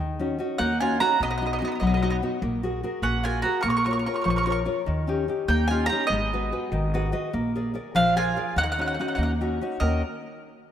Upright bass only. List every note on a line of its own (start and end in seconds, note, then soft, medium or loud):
0.00 0.37 D#2 medium
0.60 0.99 D#2 medium
1.20 1.60 B1 medium
1.81 2.21 B1 medium
2.42 2.81 A#1 loud
3.02 3.42 A#1 medium
3.64 4.04 A#1 medium
4.26 4.66 A#1 medium
4.88 5.28 D#2 medium
5.48 5.89 D#2 medium
6.10 6.50 G#1 medium
6.72 7.12 G#1 loud
7.34 7.74 A#1 medium
7.95 8.35 A#1 medium
8.56 8.97 D#2 medium
9.18 9.59 D#2 medium
9.81 10.01 D#2 medium